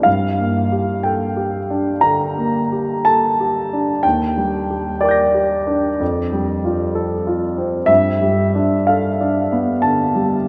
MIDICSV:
0, 0, Header, 1, 2, 480
1, 0, Start_track
1, 0, Tempo, 1000000
1, 29, Time_signature, 4, 2, 24, 8
1, 1469, Tempo, 983607
1, 2909, Tempo, 940439
1, 3869, Tempo, 966184
1, 5156, End_track
2, 0, Start_track
2, 0, Title_t, "Grand piano"
2, 0, Program_c, 0, 0
2, 0, Control_c, 0, 64, 127
2, 16, Note_on_c, 0, 77, 67
2, 25, Note_on_c, 0, 43, 42
2, 37, Control_c, 0, 64, 0
2, 122, Control_c, 0, 64, 127
2, 189, Note_on_c, 0, 58, 34
2, 347, Note_on_c, 0, 67, 31
2, 442, Note_off_c, 0, 58, 0
2, 496, Note_on_c, 0, 79, 56
2, 499, Note_off_c, 0, 77, 0
2, 504, Note_on_c, 0, 69, 36
2, 598, Note_off_c, 0, 67, 0
2, 656, Note_on_c, 0, 67, 36
2, 756, Note_off_c, 0, 69, 0
2, 817, Note_on_c, 0, 62, 35
2, 912, Note_off_c, 0, 67, 0
2, 958, Note_off_c, 0, 43, 0
2, 965, Note_on_c, 0, 82, 70
2, 975, Note_off_c, 0, 79, 0
2, 975, Note_on_c, 0, 50, 35
2, 1076, Note_off_c, 0, 62, 0
2, 1142, Note_on_c, 0, 58, 35
2, 1240, Note_off_c, 0, 50, 0
2, 1307, Note_on_c, 0, 67, 34
2, 1405, Note_off_c, 0, 58, 0
2, 1462, Note_off_c, 0, 82, 0
2, 1463, Note_on_c, 0, 81, 72
2, 1470, Note_on_c, 0, 69, 38
2, 1565, Note_off_c, 0, 67, 0
2, 1636, Note_on_c, 0, 67, 37
2, 1725, Note_off_c, 0, 69, 0
2, 1796, Note_on_c, 0, 62, 35
2, 1887, Note_off_c, 0, 67, 0
2, 1942, Note_on_c, 0, 79, 67
2, 1944, Note_off_c, 0, 81, 0
2, 1951, Note_on_c, 0, 39, 44
2, 1952, Note_off_c, 0, 62, 0
2, 1955, Control_c, 0, 64, 0
2, 2023, Control_c, 0, 64, 127
2, 2110, Note_on_c, 0, 55, 35
2, 2271, Note_on_c, 0, 67, 35
2, 2367, Note_off_c, 0, 55, 0
2, 2418, Note_on_c, 0, 74, 61
2, 2419, Note_off_c, 0, 79, 0
2, 2426, Note_on_c, 0, 79, 31
2, 2429, Note_on_c, 0, 70, 37
2, 2441, Note_on_c, 0, 86, 29
2, 2457, Note_on_c, 0, 91, 31
2, 2469, Note_on_c, 0, 94, 30
2, 2527, Note_off_c, 0, 67, 0
2, 2584, Note_on_c, 0, 67, 36
2, 2686, Note_off_c, 0, 70, 0
2, 2742, Note_on_c, 0, 62, 38
2, 2842, Note_off_c, 0, 67, 0
2, 2887, Note_off_c, 0, 79, 0
2, 2891, Note_off_c, 0, 39, 0
2, 2895, Note_off_c, 0, 86, 0
2, 2903, Note_off_c, 0, 91, 0
2, 2904, Note_off_c, 0, 62, 0
2, 2905, Note_on_c, 0, 41, 46
2, 2908, Note_off_c, 0, 94, 0
2, 2915, Control_c, 0, 64, 0
2, 3005, Control_c, 0, 64, 127
2, 3069, Note_on_c, 0, 55, 38
2, 3234, Note_on_c, 0, 65, 37
2, 3325, Note_off_c, 0, 55, 0
2, 3389, Note_on_c, 0, 69, 42
2, 3486, Note_off_c, 0, 65, 0
2, 3551, Note_on_c, 0, 65, 39
2, 3620, Note_off_c, 0, 74, 0
2, 3642, Note_off_c, 0, 69, 0
2, 3710, Note_on_c, 0, 60, 37
2, 3805, Note_off_c, 0, 65, 0
2, 3846, Note_off_c, 0, 41, 0
2, 3854, Note_on_c, 0, 76, 75
2, 3861, Note_on_c, 0, 43, 45
2, 3870, Note_off_c, 0, 60, 0
2, 3876, Control_c, 0, 64, 0
2, 3964, Control_c, 0, 64, 127
2, 4028, Note_on_c, 0, 55, 38
2, 4196, Note_on_c, 0, 62, 37
2, 4294, Note_off_c, 0, 55, 0
2, 4353, Note_off_c, 0, 76, 0
2, 4354, Note_on_c, 0, 77, 57
2, 4363, Note_on_c, 0, 69, 41
2, 4458, Note_off_c, 0, 62, 0
2, 4522, Note_on_c, 0, 62, 38
2, 4617, Note_off_c, 0, 69, 0
2, 4679, Note_on_c, 0, 59, 38
2, 4771, Note_off_c, 0, 62, 0
2, 4809, Note_off_c, 0, 43, 0
2, 4826, Note_on_c, 0, 81, 69
2, 4829, Note_off_c, 0, 77, 0
2, 4836, Note_on_c, 0, 50, 39
2, 4926, Note_off_c, 0, 59, 0
2, 4991, Note_on_c, 0, 55, 39
2, 5087, Note_off_c, 0, 50, 0
2, 5156, Note_off_c, 0, 55, 0
2, 5156, Note_off_c, 0, 81, 0
2, 5156, End_track
0, 0, End_of_file